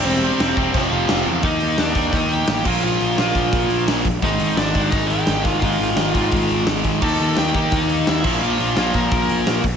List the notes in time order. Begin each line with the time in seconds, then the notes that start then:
0.04 E1 C3 G3 C4 C5, crash
0.22 C3 G3 C4
0.40 E1 C3 G3 C4, snare, crash
0.57 E1 C3 G3 C4, kick
0.74 F1 F2 C3 F3 F5, kick, crash
0.78 F4
0.92 F1 F2 C3 F3
1.09 F1 F2 C3 F3, snare, crash
1.26 E2 F2 C3 F3
1.43 D#2 D#3 A#3 D#4, kick, open hi-hat
1.47 D#5
1.60 D#2, open hi-hat
1.78 D#2 D4 D5, snare, open hi-hat
1.94 D#2 D#3 A#3 D#4, kick, open hi-hat
2.12 D#2 D#4 D#5, kick, open hi-hat
2.31 G4 G5, open hi-hat
2.48 A1, snare, open hi-hat
2.65 A#1 A#2 F3 A#3 F4 F5, kick, crash
2.83 A#1 F4 F5
3.00 A#1, open hi-hat
3.18 A#1 A#2 F3 A#3, snare, open hi-hat
3.35 A#1, kick, open hi-hat
3.52 A#1, kick, open hi-hat
3.70 A#1, open hi-hat
3.87 A#1, snare, open hi-hat
4.05 A#1, kick, open hi-hat
4.22 G#1 G#2 D#3 G#3 D#4 D#5, kick, open hi-hat
4.40 G#1, open hi-hat
4.57 G#1 D4 D5, snare, open hi-hat
4.75 G#1 G#2 D#3 G#3, kick, open hi-hat
4.90 G#1 D#4 D#5, kick, open hi-hat
5.08 G4 G5, open hi-hat
5.27 G#1, snare, open hi-hat
5.43 G#1 F4 F5, kick, open hi-hat
5.60 G#1 G#2 D#3 G#3 F4 F5, kick, open hi-hat
5.79 G#1, open hi-hat
5.97 G#1, snare, open hi-hat
6.14 G#1 G#2 D#3 G#3, kick, open hi-hat
6.32 G#1, kick, open hi-hat
6.49 G#1, open hi-hat
6.67 G#1, snare, open hi-hat
6.84 G#1, kick, open hi-hat
7.02 D#2 D#3 A#3 D#4 A4 A5, kick, crash
7.19 D#2, open hi-hat
7.37 D#2 G4 G5, snare, open hi-hat
7.54 D#2 D#3 A#3 D#4, kick, open hi-hat
7.71 D#2 D#4 D#5, kick, open hi-hat
7.89 open hi-hat
8.07 D#2 E4 E5, snare, open hi-hat
8.24 A#1 A#2 F3 A#3, kick, crash
8.43 A#1 F4 F5
8.59 A#1, open hi-hat
8.76 A#1 A#2 F3 A#3 F4 F5, snare, open hi-hat
8.94 A#1 A#4 A#5, kick, open hi-hat
9.11 A#1, kick, open hi-hat
9.29 A#1, open hi-hat
9.46 A#1, snare, open hi-hat
9.64 A#1, kick, open hi-hat